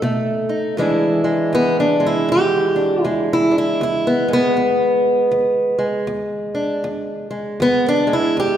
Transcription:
Already playing: D#4 A4
0.02 B2 A3
0.49 D#4
0.77 E2 E3 G#3 D4 E4
1.24 G#3
1.53 E2 B3
1.80 D4
2.00 G#3
2.06 E4
2.29 E2 G4
2.76 D4
3.04 E2 G#3 E4
3.33 E4
3.51 D4
3.58 E4
3.81 E2 E4
4.07 B3
4.28 G#3
4.33 B3
4.57 E2
5.32 E2
5.79 G#3
6.07 E2
6.55 D4
6.84 E2
7.31 G#3
7.60 E2 B3
7.89 D4
8.07 G#3
8.13 E4
8.37 E2 G4

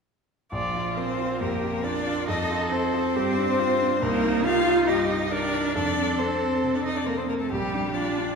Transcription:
0.52 A#1 F3 F4 D5
0.75 F4
0.97 C4 F4 A#4 C5
1.19 F4
1.40 F2 A#3 G4 A#4
1.63 F4
1.83 D4 F4 A#4 D5
2.07 F4
2.27 F2 D#4 A4 D#5
2.51 F4
2.71 C4 A4 C5
2.94 F4
3.15 G2 G4
3.38 D4
3.59 F4 G4
3.81 D4
4.02 C2 A#3 D#4 A#4
4.24 D#4
4.44 F4 G4 F5
4.67 D#4
4.87 G2 D#4 G4 D#5
5.10 D#4
5.32 D4 G4 A#4 D5
5.54 D#4
5.75 F2 D4 A4 D5
5.98 C4
6.19 C4 A4 C5
6.41 C4
6.64 C3
6.75 D4 D5
6.84 C4 D#4 D#5
6.96 D4 D5
7.07 A#3 A4 A#4
7.18 C4 C5
7.28 A#3 C4 A#4
7.40 A3 A4
7.50 A#1 G3 G4
7.74 D4
7.94 D4 F4 G4 D5
8.18 D4

